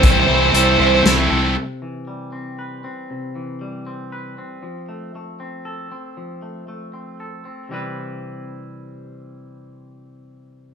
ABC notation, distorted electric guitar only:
X:1
M:3/4
L:1/8
Q:1/4=117
K:C
V:1 name="Distorted electric guitar"
[C,E,A,CE] [A,CE] [C,E,A,CE] [A,CE]3 | z6 | z6 | z6 |
z6 | z6 | z6 |]